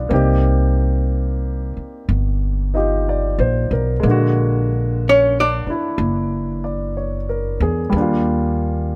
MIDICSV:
0, 0, Header, 1, 5, 480
1, 0, Start_track
1, 0, Tempo, 985222
1, 53, Time_signature, 4, 2, 24, 8
1, 1972, Tempo, 970874
1, 4398, End_track
2, 0, Start_track
2, 0, Title_t, "Hollow-body jazz guitar"
2, 0, Program_c, 0, 26
2, 2489, Note_on_c, 0, 61, 58
2, 2490, Note_on_c, 0, 73, 58
2, 2625, Note_off_c, 0, 73, 0
2, 2626, Note_off_c, 0, 61, 0
2, 2641, Note_on_c, 0, 74, 77
2, 2644, Note_on_c, 0, 62, 65
2, 2793, Note_off_c, 0, 74, 0
2, 2794, Note_off_c, 0, 62, 0
2, 4398, End_track
3, 0, Start_track
3, 0, Title_t, "Grand piano"
3, 0, Program_c, 1, 0
3, 0, Control_c, 1, 64, 127
3, 0, Note_on_c, 1, 59, 47
3, 0, Note_on_c, 1, 62, 47
3, 0, Note_on_c, 1, 63, 45
3, 0, Note_on_c, 1, 65, 56
3, 0, Note_on_c, 1, 67, 39
3, 0, Note_on_c, 1, 71, 37
3, 0, Note_on_c, 1, 74, 40
3, 44, Note_on_c, 1, 58, 50
3, 50, Note_on_c, 1, 60, 45
3, 52, Note_off_c, 1, 62, 0
3, 52, Note_off_c, 1, 63, 0
3, 59, Control_c, 1, 64, 0
3, 59, Note_on_c, 1, 63, 40
3, 60, Note_off_c, 1, 71, 0
3, 61, Note_off_c, 1, 65, 0
3, 63, Note_off_c, 1, 59, 0
3, 63, Note_off_c, 1, 67, 0
3, 67, Note_on_c, 1, 67, 51
3, 146, Note_off_c, 1, 74, 0
3, 158, Control_c, 1, 64, 127
3, 1326, Note_off_c, 1, 63, 0
3, 1334, Note_on_c, 1, 63, 40
3, 1338, Note_on_c, 1, 75, 41
3, 1341, Note_off_c, 1, 67, 0
3, 1343, Note_on_c, 1, 65, 34
3, 1349, Note_on_c, 1, 67, 43
3, 1505, Note_on_c, 1, 74, 46
3, 1583, Note_off_c, 1, 75, 0
3, 1656, Note_on_c, 1, 72, 46
3, 1799, Note_off_c, 1, 74, 0
3, 1815, Note_on_c, 1, 70, 45
3, 1901, Note_off_c, 1, 72, 0
3, 1948, Note_on_c, 1, 56, 50
3, 1958, Note_off_c, 1, 58, 0
3, 1966, Note_on_c, 1, 58, 48
3, 1969, Note_off_c, 1, 60, 0
3, 1969, Note_off_c, 1, 63, 0
3, 1974, Note_off_c, 1, 65, 0
3, 1976, Note_off_c, 1, 67, 0
3, 1977, Control_c, 1, 64, 0
3, 1984, Note_on_c, 1, 50, 50
3, 2003, Note_on_c, 1, 66, 57
3, 2061, Note_off_c, 1, 70, 0
3, 2070, Control_c, 1, 64, 127
3, 2773, Note_on_c, 1, 62, 41
3, 2789, Note_on_c, 1, 64, 46
3, 3254, Note_on_c, 1, 74, 39
3, 3417, Note_on_c, 1, 73, 39
3, 3502, Note_off_c, 1, 74, 0
3, 3576, Note_on_c, 1, 70, 45
3, 3716, Note_off_c, 1, 73, 0
3, 3740, Note_on_c, 1, 68, 47
3, 3823, Note_off_c, 1, 70, 0
3, 3874, Note_on_c, 1, 55, 47
3, 3881, Note_off_c, 1, 56, 0
3, 3882, Note_off_c, 1, 58, 0
3, 3889, Note_on_c, 1, 58, 39
3, 3893, Note_off_c, 1, 62, 0
3, 3899, Note_off_c, 1, 50, 0
3, 3899, Control_c, 1, 64, 0
3, 3901, Note_off_c, 1, 64, 0
3, 3908, Note_off_c, 1, 66, 0
3, 3908, Note_on_c, 1, 62, 43
3, 3927, Note_on_c, 1, 65, 51
3, 3984, Note_off_c, 1, 68, 0
3, 3984, Control_c, 1, 64, 127
3, 4398, Note_off_c, 1, 55, 0
3, 4398, Note_off_c, 1, 58, 0
3, 4398, Note_off_c, 1, 62, 0
3, 4398, Note_off_c, 1, 65, 0
3, 4398, End_track
4, 0, Start_track
4, 0, Title_t, "Upright bass"
4, 0, Program_c, 2, 32
4, 51, Note_on_c, 2, 36, 66
4, 840, Note_off_c, 2, 36, 0
4, 1016, Note_on_c, 2, 31, 67
4, 1632, Note_off_c, 2, 31, 0
4, 1649, Note_on_c, 2, 34, 56
4, 1799, Note_off_c, 2, 34, 0
4, 1807, Note_on_c, 2, 35, 60
4, 1957, Note_off_c, 2, 35, 0
4, 1965, Note_on_c, 2, 34, 74
4, 2750, Note_off_c, 2, 34, 0
4, 2927, Note_on_c, 2, 30, 71
4, 3712, Note_off_c, 2, 30, 0
4, 3730, Note_on_c, 2, 40, 65
4, 3879, Note_off_c, 2, 40, 0
4, 3889, Note_on_c, 2, 39, 74
4, 4398, Note_off_c, 2, 39, 0
4, 4398, End_track
5, 0, Start_track
5, 0, Title_t, "Muted upright bass strokes"
5, 861, Note_on_c, 9, 29, 33
5, 910, Note_off_c, 9, 29, 0
5, 2772, Note_on_c, 9, 29, 32
5, 2822, Note_off_c, 9, 29, 0
5, 4398, End_track
0, 0, End_of_file